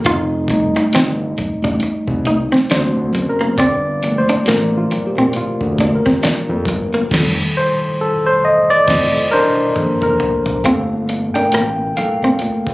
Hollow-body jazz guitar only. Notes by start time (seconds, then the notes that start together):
0.06 F4
0.50 muted hollow-body jazz guitar stroke
0.76 D#4
0.95 C4
1.38 muted hollow-body jazz guitar stroke
1.64 D4
1.83 muted hollow-body jazz guitar stroke
2.27 D#4
2.52 C4
2.71 D4
3.15 muted hollow-body jazz guitar stroke
3.41 A#3
3.60 C4
4.04 muted hollow-body jazz guitar stroke
4.29 D4
4.48 A#3
4.92 muted hollow-body jazz guitar stroke
5.18 C4
5.36 muted hollow-body jazz guitar stroke
5.80 D4
6.06 C4
6.23 D4
6.69 muted hollow-body jazz guitar stroke
6.94 A#3
10.65 C4
11.10 muted hollow-body jazz guitar stroke
11.36 D4
11.54 A#3
11.98 muted hollow-body jazz guitar stroke
12.24 C4
12.42 muted hollow-body jazz guitar stroke